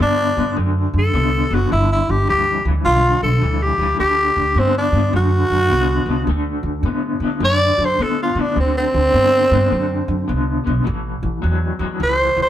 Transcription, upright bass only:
0.00 0.27 G2 medium
0.37 0.52 G2 medium
0.56 0.84 F#2 medium
0.94 1.09 F#2 medium
1.14 1.42 C2 medium
1.50 1.66 F#1 medium
1.72 1.99 G1 medium
2.09 2.24 G1 medium
2.29 2.56 D2 medium
2.65 2.80 D2 medium
2.85 3.13 B1 medium
3.22 3.38 B1 medium
3.42 3.70 D2 medium
3.78 3.94 D2 medium
3.99 4.27 D2 medium
4.36 4.52 D2 medium
4.55 4.83 G2 medium
4.92 5.08 G2 medium
5.13 5.41 F#2 medium
5.50 5.66 F#2 medium
5.70 5.98 C2 medium
6.06 6.22 C2 medium
6.27 6.55 D2 medium
6.63 6.79 D2 medium
6.83 7.11 A2 medium
7.20 7.36 A2 medium
7.40 7.69 F#2 medium
7.78 7.94 F#2 medium
7.99 8.27 A2 medium
8.35 8.51 A2 medium
8.56 8.84 D2 medium
8.94 9.09 D2 medium
9.14 9.41 G2 medium
9.51 9.66 G2 medium
9.71 9.99 F#2 medium
10.08 10.23 F#2 medium
10.29 10.56 C2 medium
10.67 10.81 B1 medium
10.87 11.14 A1 medium
11.23 11.38 A1 medium
11.44 11.71 E2 medium
11.79 11.94 E2 medium
12.00 12.27 C#2 medium
12.37 12.49 C#2 medium

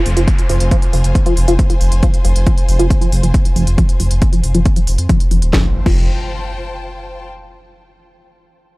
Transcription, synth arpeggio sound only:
0.17 0.20 F3 medium
0.50 0.57 F3 loud
0.71 0.76 F3 loud
0.93 0.96 F3 medium
1.26 1.34 F3 loud
1.48 1.53 F3 loud
1.70 1.73 F3 medium
2.03 2.10 F3 loud
2.24 2.30 F3 loud
2.46 2.50 F3 medium
2.79 2.87 F3 loud
3.01 3.06 F3 loud
3.23 3.26 F3 medium
3.56 3.63 F3 loud
3.78 3.83 F3 loud
4.00 4.03 F3 medium
4.33 4.40 F3 loud
4.55 4.60 F3 loud
4.76 4.80 F3 medium
5.09 5.17 F3 loud
5.31 5.36 F3 loud
5.53 5.65 F3 medium
5.86 6.06 F3 loud

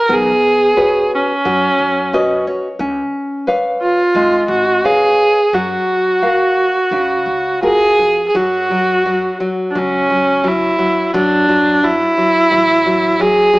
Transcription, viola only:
0.00 0.14 A#4 medium
0.12 1.13 G#4 medium
1.15 2.44 C#4 medium
3.81 4.46 F4 medium
4.50 4.87 F#4 medium
4.85 5.56 G#4 medium
5.54 7.63 F#4 medium
7.64 8.24 G#4 loud
8.29 8.38 G#4 medium
8.36 9.42 F#4 medium
9.71 9.80 D4 medium
9.78 10.49 C#4 medium
10.48 11.16 E4 medium
11.16 11.86 D4 medium
11.84 13.22 E4 medium
13.21 13.59 G#4 loud

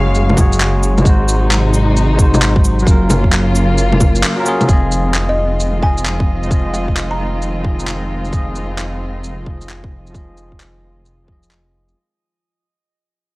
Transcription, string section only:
0.00 1.02 C#3 medium
0.00 1.02 F#3 medium
0.00 2.83 G#3 medium
0.00 1.03 F5 medium
1.05 2.86 C3 medium
1.05 4.65 F#3 medium
1.05 2.86 D#4 loud
2.87 4.67 C#3 medium
2.87 4.67 A#3 medium
2.87 4.67 F4 loud
4.68 11.92 D#3 medium
4.68 11.92 G#3 medium
4.68 11.92 C4 medium
4.68 11.92 F4 medium

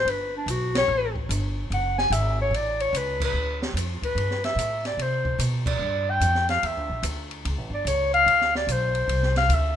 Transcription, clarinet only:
0.00 0.11 C5 medium
0.09 0.34 B4 medium
0.37 0.52 D4 medium
0.50 0.75 F#4 medium
0.77 1.14 C#5 medium
1.74 1.97 F#5 medium
1.98 2.14 G#5 medium
2.13 2.39 E5 medium
2.42 2.57 C#5 medium
2.55 2.83 D5 medium
2.81 2.99 C#5 medium
2.97 3.22 B4 medium
3.24 3.60 B4 medium
4.05 4.41 B4 medium
4.45 4.82 E5 medium
4.86 5.04 D5 medium
5.02 5.41 C5 medium
5.67 6.11 D5 medium
6.10 6.49 G5 loud
6.50 6.68 F5 medium
6.66 7.05 E5 medium
7.74 7.89 D5 medium
7.87 8.13 C#5 medium
8.14 8.51 F5 loud
8.56 8.73 D5 medium
8.72 9.37 C5 medium
9.38 9.56 F5 loud
9.54 9.76 E5 medium

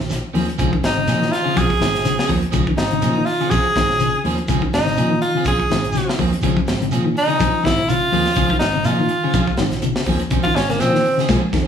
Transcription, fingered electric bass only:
0.00 0.21 A#1 medium
0.34 0.47 D#2 loud
0.59 0.71 C#2 medium
0.83 1.05 G#1 medium
1.07 1.29 A#2 medium
1.57 1.69 A#1 medium
1.81 1.93 G#1 medium
1.94 2.16 A#1 medium
2.29 2.41 D#2 loud
2.54 2.66 C#2 medium
2.78 3.00 G#1 medium
3.03 3.25 A#2 medium
3.52 3.63 A#1 medium
3.76 3.88 G#1 medium
3.90 4.11 A#1 medium
4.25 4.37 D#2 loud
4.48 4.60 C#2 medium
4.73 4.95 G#1 medium
4.98 5.19 A#2 medium
5.45 5.57 A#1 medium
5.71 5.83 G#1 medium
5.84 6.05 A#1 medium
6.19 6.31 D#2 loud
6.43 6.55 C#2 loud
6.68 6.89 G#1 medium
6.93 7.14 A#2 medium
7.40 7.52 A#1 medium
7.65 7.77 G#1 medium
7.78 7.99 A#1 medium
8.13 8.25 D#2 loud
8.37 8.49 C#2 medium
8.61 8.83 G#1 medium
8.85 9.07 A#2 medium
9.34 9.46 A#1 loud
9.58 9.70 G#1 medium
9.71 9.93 A#1 medium
10.07 10.19 D#2 loud
10.31 10.43 C#2 medium
10.55 10.77 G#1 medium
10.78 11.01 A#2 medium
11.29 11.41 A#2 medium
11.41 muted fingered electric bass stroke soft
11.53 11.65 F2 loud

